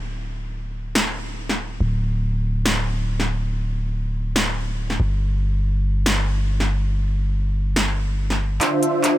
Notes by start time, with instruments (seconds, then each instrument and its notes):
Already playing: 808-style bass D1
0.95 snare
1.49 snare
1.81 808-style bass D1
2.66 snare
3.20 snare
4.36 snare
4.90 snare
5.00 808-style bass G1
6.06 snare
6.60 snare
7.76 snare
8.30 snare
8.61 808-style bass D1, supersaw synth D3 D4 F4 C5 E5, clap, closed hi-hat
8.83 closed hi-hat
9.04 clap, closed hi-hat